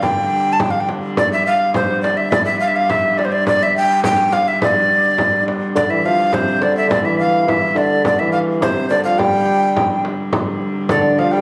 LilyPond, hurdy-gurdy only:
\new Staff \with { instrumentName = "Hurdy-gurdy" } { \clef bass \time 2/4 \key d \minor \tempo 4 = 105 <g, d>2 | <g, d>2~ | <g, d>2~ | <g, d>2~ |
<g, d>2 | <g, d>2~ | <g, d>2~ | <g, d>2~ |
<g, d>2 | <g, d>2 | }